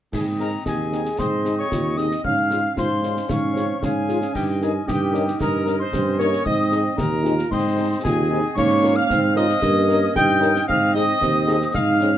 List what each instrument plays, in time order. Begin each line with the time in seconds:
0.13 tuba G#2, woodwind section C4 D#5, trumpet section G#4, piccolo G#5, concert bass drum, crash
0.40 french horn section C4 D#4 G#4, trumpet section A#4, piccolo A#5, snare
0.65 tuba D#2, woodwind section C4 D#5, euphonium G#4, trumpet section G#4, piccolo G#5, concert bass drum, snare
0.92 french horn section C4 D#4 G#4, snare
1.06 snare
1.19 tuba G#2, woodwind section C4 D#5, trumpet section C5, piccolo C6, concert bass drum, snare
1.45 french horn section C4 D#4 G#4, snare
1.58 trumpet section C#5, piccolo C#6
1.71 tuba D#2, euphonium F4, concert bass drum, snare
1.97 french horn section C4 D#4 G#4, euphonium D#4, trumpet section D#5, piccolo D#6, snare
2.11 snare
2.24 tuba G#2, euphonium C#4, woodwind section C#4 F5, trumpet section F5, piccolo F6, concert bass drum
2.51 french horn section C#4 F4 G#4, euphonium D#4, snare
2.76 tuba G#2, euphonium F4, trumpet section C5, piccolo C6, concert bass drum, snare
3.02 french horn section C#4 F4 G#4, euphonium D#4, snare
3.17 snare
3.27 tuba G#2, euphonium C#4, woodwind section C#4 F5, trumpet section C#5, concert bass drum, snare
3.32 piccolo C#6
3.54 euphonium C4, french horn section C#4 F4 G#4, snare
3.81 tuba G#2, euphonium C#4, woodwind section C#4 F5, trumpet section G#4, piccolo G#5, concert bass drum, snare
4.09 french horn section C#4 F4 G#4, snare
4.22 snare
4.34 tuba G2, woodwind section C#4 D#5, euphonium D#4, trumpet section G4, piccolo G5, concert bass drum, crash
4.62 french horn section C#4 D#4 A#4, trumpet section G#4, piccolo G#5, snare
4.87 tuba G2, woodwind section C#4 D#5, euphonium D#4, trumpet section G4, piccolo G5, concert bass drum, snare
5.14 french horn section C#4 D#4 A#4, snare
5.28 snare
5.40 tuba G2, woodwind section C#4 D#5, trumpet section A#4, piccolo A#5, concert bass drum, snare
5.66 french horn section C#4 D#4 A#4, snare
5.79 trumpet section C5, piccolo C6
5.92 tuba G2, euphonium C4, concert bass drum, snare
6.19 euphonium A#3, french horn section C#4 D#4 A#4, trumpet section C#5, piccolo C#6, snare
6.33 snare
6.44 tuba G#2, euphonium C4, woodwind section C4 D#5, trumpet section D#5, piccolo D#6, concert bass drum
6.72 french horn section C4 D#4 G#4, snare
6.97 tuba D#2, euphonium D#4, trumpet section A#4, piccolo A#5, concert bass drum, snare
7.24 french horn section C4 D#4 G#4, euphonium F4, snare
7.39 snare
7.50 tuba G#2, woodwind section C4 D#5, euphonium D#4, trumpet section C5, piccolo C6, concert bass drum, snare
7.77 french horn section C4 D#4 G#4
8.03 tuba D#2, woodwind section C4 D#5, euphonium F4, trumpet section G#4, piccolo G#5, concert bass drum, snare
8.29 french horn section C4 D#4 G#4, euphonium D#4
8.54 tuba G#2, woodwind section A#3 F5, euphonium C#4, trumpet section C#5, piccolo C#6, concert bass drum, crash
8.83 french horn section C#4 F4 A#4, snare
8.96 trumpet section F5, piccolo F6
9.09 tuba G#2, euphonium C4, woodwind section C4, concert bass drum, snare
9.36 french horn section C#4 F4 A#4, trumpet section D#5, piccolo D#6, snare
9.49 snare
9.62 tuba G2, euphonium A#3, woodwind section C#4 D#5, concert bass drum, snare
9.88 french horn section C#4 D#4 A#4, snare
10.15 tuba G2, woodwind section C#4 D#5, euphonium D#4, trumpet section G5, piccolo G6, concert bass drum, snare
10.40 french horn section C#4 D#4 A#4, snare
10.56 snare
10.68 tuba G#2, euphonium C4, woodwind section C4 D#5, trumpet section F5, piccolo F6, concert bass drum
10.94 french horn section C4 D#4 G#4, trumpet section D#5, piccolo D#6, snare
11.21 tuba D#2, euphonium C4, concert bass drum, snare
11.46 french horn section C4 D#4 G#4, snare
11.62 snare
11.74 tuba G#2, euphonium D#4, trumpet section F5, piccolo F6, concert bass drum, snare
12.00 french horn section C4 D#4 G#4, euphonium C#4, snare